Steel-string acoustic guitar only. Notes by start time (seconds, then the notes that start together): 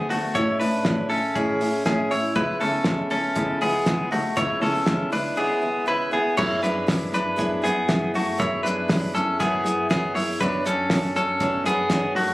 Already playing: D3 A3 B3
0.11 A3 B3 F#4
0.36 A2 E3 G#3 C#4 E4
0.61 G#3 C#4 E4
0.85 E3 G#3 C#4 E4
1.11 G#3 C#4 E4
1.36 A2 E3 G#3 C#4 E4
1.60 G#3 C#4 E4
1.86 E3 G#3 C#4 E4
2.11 G#3 C#4 E4
2.35 C#3 G#3 B3 E4
2.60 G#3 B3 E4
2.85 C#3 G#3 B3 E4
3.11 G#3 B3 E4
3.35 C#3 G#3 B3 E4
3.61 G#3 B3 E4
3.85 C#3 G#3 B3 E4
4.11 G#3 B3 E4
4.36 C#3 G#3 B3 E4
4.61 G#3 B3 E4
4.86 C#3 G#3 B3 E4
5.10 G#3 B3 E4
5.36 C#3 G#3 B3 E4
5.61 G#3 B3 E4
5.86 C#3 G#3 B3 E4
6.11 G#3 B3 E4
6.37 F#3 B3 E4 G#4
6.62 B3 E4 G#4
6.87 F#3 B3 E4 G#4
7.12 B3 E4 G#4
7.36 F#3 B3 E4 G#4
7.62 B3 E4 G#4
7.88 F#3 B3 E4 G#4
8.14 B3 E4 G#4
8.38 F#3 B3 E4 G#4
8.64 B3 E4 G#4
8.88 F#3 B3 E4 G#4
9.14 B3 E4 G#4
9.40 F#3 B3 E4 G#4
9.64 B3 E4 G#4
9.89 F#3 B3 E4 G#4
10.15 B3 E4 G#4
10.40 F#3 B3 D4 F#4 C#5
10.64 D4 F#4 C#5
10.90 B3 D4 F#4 C#5
11.15 D4 F#4 C#5
11.40 F#3 B3 D4 F#4 C#5
11.65 D4 F#4 C#5
11.90 B3 D4 F#4 C#5
12.16 D4 F#4 C#5